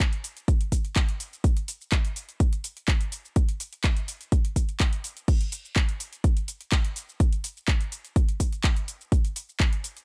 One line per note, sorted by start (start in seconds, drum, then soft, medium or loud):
0.00 kick loud
0.00 clap loud
0.00 closed hi-hat medium
0.00 shaker soft
0.13 closed hi-hat medium
0.13 shaker soft
0.24 open hi-hat medium
0.24 shaker medium
0.37 closed hi-hat soft
0.37 shaker soft
0.48 kick loud
0.48 closed hi-hat medium
0.48 shaker soft
0.61 closed hi-hat medium
0.61 shaker soft
0.72 kick medium
0.72 open hi-hat loud
0.72 shaker medium
0.85 closed hi-hat soft
0.85 shaker soft
0.96 kick loud
0.96 clap loud
0.96 closed hi-hat medium
0.96 shaker soft
1.09 closed hi-hat medium
1.09 shaker soft
1.20 open hi-hat medium
1.20 shaker medium
1.33 shaker soft
1.44 kick loud
1.44 closed hi-hat medium
1.44 shaker soft
1.57 closed hi-hat medium
1.57 shaker soft
1.68 open hi-hat loud
1.68 shaker medium
1.81 shaker soft
1.92 kick loud
1.92 clap loud
1.92 closed hi-hat medium
1.92 shaker soft
2.05 closed hi-hat medium
2.05 shaker soft
2.16 open hi-hat medium
2.16 shaker medium
2.29 closed hi-hat soft
2.29 shaker soft
2.40 kick loud
2.40 closed hi-hat medium
2.40 shaker soft
2.53 closed hi-hat medium
2.53 shaker soft
2.64 open hi-hat loud
2.64 shaker medium
2.77 closed hi-hat soft
2.77 shaker soft
2.88 kick loud
2.88 clap loud
2.88 closed hi-hat medium
2.88 shaker soft
3.01 closed hi-hat medium
3.01 shaker soft
3.12 open hi-hat medium
3.12 shaker medium
3.25 shaker soft
3.36 kick loud
3.36 closed hi-hat medium
3.36 shaker soft
3.49 closed hi-hat medium
3.49 shaker soft
3.60 open hi-hat loud
3.60 shaker medium
3.73 closed hi-hat soft
3.73 shaker soft
3.84 kick loud
3.84 clap loud
3.84 closed hi-hat medium
3.84 shaker soft
3.97 closed hi-hat medium
3.97 shaker soft
4.08 open hi-hat medium
4.08 shaker medium
4.21 closed hi-hat soft
4.21 shaker soft
4.32 kick loud
4.32 closed hi-hat medium
4.32 shaker soft
4.45 closed hi-hat medium
4.45 shaker soft
4.56 kick medium
4.56 open hi-hat loud
4.56 shaker medium
4.69 closed hi-hat soft
4.69 shaker soft
4.80 kick loud
4.80 clap loud
4.80 closed hi-hat medium
4.80 shaker soft
4.93 closed hi-hat medium
4.93 shaker soft
5.04 open hi-hat medium
5.04 shaker medium
5.17 closed hi-hat soft
5.17 shaker soft
5.28 kick loud
5.28 closed hi-hat medium
5.28 crash medium
5.28 shaker soft
5.41 closed hi-hat medium
5.41 shaker soft
5.52 open hi-hat loud
5.52 shaker medium
5.65 shaker soft
5.76 kick loud
5.76 clap loud
5.76 closed hi-hat medium
5.76 shaker soft
5.89 closed hi-hat medium
5.89 shaker soft
6.00 open hi-hat loud
6.00 shaker medium
6.13 closed hi-hat soft
6.13 shaker soft
6.24 kick loud
6.24 closed hi-hat medium
6.24 shaker soft
6.37 closed hi-hat medium
6.37 shaker soft
6.48 open hi-hat loud
6.48 shaker medium
6.61 closed hi-hat soft
6.61 shaker soft
6.72 kick loud
6.72 clap loud
6.72 closed hi-hat medium
6.72 shaker soft
6.85 closed hi-hat medium
6.85 shaker soft
6.96 open hi-hat medium
6.96 shaker medium
7.09 shaker soft
7.20 kick loud
7.20 closed hi-hat medium
7.20 shaker soft
7.33 closed hi-hat medium
7.33 shaker soft
7.44 open hi-hat loud
7.44 shaker medium
7.57 shaker soft
7.68 kick loud
7.68 clap loud
7.68 closed hi-hat medium
7.68 shaker soft
7.81 closed hi-hat medium
7.81 shaker soft
7.92 open hi-hat loud
7.92 shaker medium
8.05 closed hi-hat soft
8.05 shaker soft
8.16 kick loud
8.16 closed hi-hat medium
8.16 shaker soft
8.29 closed hi-hat medium
8.29 shaker soft
8.40 kick medium
8.40 open hi-hat loud
8.40 shaker medium
8.53 closed hi-hat soft
8.53 shaker soft
8.64 kick loud
8.64 clap loud
8.64 closed hi-hat medium
8.64 shaker soft
8.77 closed hi-hat medium
8.77 shaker soft
8.88 open hi-hat loud
8.88 shaker medium
9.01 shaker soft
9.12 kick loud
9.12 closed hi-hat medium
9.12 shaker soft
9.25 closed hi-hat medium
9.25 shaker soft
9.36 open hi-hat loud
9.36 shaker medium
9.49 shaker soft
9.60 kick loud
9.60 clap loud
9.60 closed hi-hat medium
9.60 shaker soft
9.73 closed hi-hat medium
9.73 shaker soft
9.84 open hi-hat loud
9.84 shaker medium
9.97 closed hi-hat soft
9.97 shaker soft